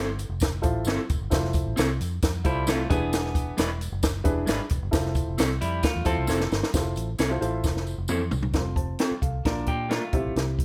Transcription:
Already playing: fingered electric bass G1
0.19 closed hi-hat, tambourine
0.29 fingered electric bass F1
0.40 kick, snare, closed hi-hat, tambourine
0.62 fingered electric bass A1, upright piano E4 F4 A4 C5, kick, closed hi-hat, tambourine
0.85 fingered electric bass G1, clean electric guitar C4 E4 A4 C5, snare, closed hi-hat, tambourine
1.10 fingered electric bass F1, kick, closed hi-hat, tambourine
1.21 fingered electric bass G1
1.30 fingered electric bass F1, upright piano E4 F4 A4 C5, kick, snare, closed hi-hat, tambourine
1.45 snare
1.53 kick, closed hi-hat, tambourine
1.66 fingered electric bass A1
1.76 fingered electric bass C2, clean electric guitar C4 E4 A4 C5, snare, closed hi-hat, tambourine
2.01 fingered electric bass F2, closed hi-hat, tambourine
2.22 fingered electric bass F2, kick, snare, closed hi-hat, tambourine
2.44 fingered electric bass C2, clean electric guitar G3 E4, upright piano E4 F4 A4 C5, kick, closed hi-hat, tambourine
2.67 clean electric guitar A3 C4 E4 F4 A4 C5, snare, closed hi-hat, tambourine
2.89 fingered electric bass E1, upright piano E3 D4 E4 G#4 B4, clean electric guitar B3 G#4, kick, closed hi-hat, tambourine
3.13 snare, closed hi-hat, tambourine
3.26 snare
3.35 kick, closed hi-hat, tambourine
3.57 fingered electric bass E1, clean electric guitar G#3 D4 E4 B4, snare, closed hi-hat, tambourine
3.81 closed hi-hat, tambourine
3.92 fingered electric bass F#1
4.03 kick, snare, closed hi-hat, tambourine
4.24 fingered electric bass E1, upright piano D4 E4 G#4 B4, kick, closed hi-hat, tambourine
4.46 fingered electric bass G#1, clean electric guitar G#3 D4 E4 B4, snare, closed hi-hat, tambourine
4.69 fingered electric bass E1, kick, closed hi-hat, tambourine
4.82 fingered electric bass F#1
4.91 fingered electric bass F1, upright piano E4 F4 A4 C5, kick, snare, closed hi-hat, tambourine
5.06 snare
5.15 kick, closed hi-hat, tambourine
5.28 fingered electric bass F1
5.38 fingered electric bass C2, clean electric guitar C4 E4 A4 C5, snare, closed hi-hat, tambourine
5.61 fingered electric bass F2, clean electric guitar G3 E4, closed hi-hat, tambourine
5.83 clean electric guitar A3 F4, kick, snare, closed hi-hat, tambourine
5.96 fingered electric bass E2
6.04 fingered electric bass E2, clean electric guitar C4 A4, upright piano E4 F4 A4 C5, kick, closed hi-hat, tambourine
6.18 fingered electric bass C2
6.27 fingered electric bass F1, clean electric guitar C4 E4 A4 C5, snare, tambourine
6.40 snare
6.52 fingered electric bass G1, snare, tambourine
6.63 snare
6.74 fingered electric bass F1, upright piano E4 F4 G#4 C5, kick, snare, closed hi-hat, tambourine
6.80 upright piano A4
6.96 fingered electric bass A1, closed hi-hat, tambourine
7.18 fingered electric bass C2, clean electric guitar C4 E4 A4 C5, snare, closed hi-hat, tambourine
7.30 upright piano E4 F4 A4 C5
7.41 fingered electric bass A1, upright piano E4 F4 A4 C5, closed hi-hat, tambourine
7.64 fingered electric bass F1, kick, snare, tambourine
7.77 snare
7.87 tambourine
7.98 fingered electric bass F1
8.08 fingered electric bass F2, clean electric guitar C4 E4 A4 C5, mid tom, tambourine
8.31 fingered electric bass C2, floor tom, tambourine
8.43 floor tom
8.53 fingered electric bass F1, upright piano C4 F4 A4 A#4, kick, snare, closed hi-hat
8.59 upright piano C5
8.76 upright piano C5 A5, kick, closed hi-hat
8.99 clean electric guitar C4 F4 A4 C5, upright piano G5, snare, closed hi-hat
9.11 muted fingered electric bass stroke
9.22 fingered electric bass C2, upright piano A4 F5, kick, closed hi-hat
9.45 fingered electric bass A#1, upright piano A#2 D4 F4 A#4 D5, clean electric guitar D4 A#4, kick, snare, closed hi-hat
9.66 fingered electric bass A#2, clean electric guitar A#3 G4, kick, closed hi-hat
9.89 clean electric guitar A3 A#3 D4 F4 A#4, snare, closed hi-hat
10.13 fingered electric bass C2, upright piano C3 E4 G4 C5 E5, kick, closed hi-hat
10.25 fingered electric bass A#1
10.36 fingered electric bass C2, snare, closed hi-hat
10.59 kick, closed hi-hat

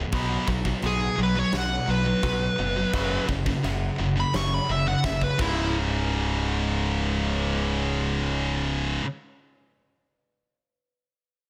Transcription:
Already playing: distorted electric guitar C#2 G#2
0.12 picked electric bass B1, distorted electric guitar B2 F#3 B3, kick, china
0.48 picked electric bass B1, distorted electric guitar B2 F#3, kick
0.65 distorted electric guitar B2 F#3, kick
0.82 picked electric bass B1, distorted electric guitar B2 F#3, china
0.86 lead electric guitar G#4
1.18 picked electric bass B1, distorted electric guitar B2 F#3
1.23 lead electric guitar B4
1.36 distorted electric guitar B2 F#3, lead electric guitar C#5
1.52 picked electric bass B1, distorted electric guitar B2 F#3, snare, china
1.57 lead electric guitar F#5
1.88 picked electric bass B1, distorted electric guitar B2 F#3, lead electric guitar B4
2.06 distorted electric guitar B2 F#3
2.23 picked electric bass B1, distorted electric guitar B2 F#3, kick, china
2.59 picked electric bass F#1, distorted electric guitar B2 F#3
2.76 distorted electric guitar B2 F#3
2.93 picked electric bass F#1, distorted electric guitar F#2 C#3 F#3, kick, china
3.28 picked electric bass F#1, distorted electric guitar F#2 C#3, kick
3.46 distorted electric guitar F#2 C#3, kick
3.64 picked electric bass F#1, distorted electric guitar F#2 C#3, china
3.98 picked electric bass F#1, distorted electric guitar F#2 C#3
4.16 distorted electric guitar F#2 C#3
4.20 lead electric guitar B5
4.34 picked electric bass F#1, distorted electric guitar F#2 C#3, lead electric guitar C#6, snare, china
4.54 lead electric guitar B5
4.69 picked electric bass F#1, distorted electric guitar F#2 C#3, lead electric guitar E5
4.86 distorted electric guitar F#2 C#3, lead electric guitar F#5
5.04 picked electric bass F#1, distorted electric guitar F#2 C#3, lead electric guitar E5, kick, snare
5.21 lead electric guitar B4, kick
5.39 picked electric bass C#1, distorted electric guitar C#2 G#2 C#3, lead electric guitar E4, kick, crash

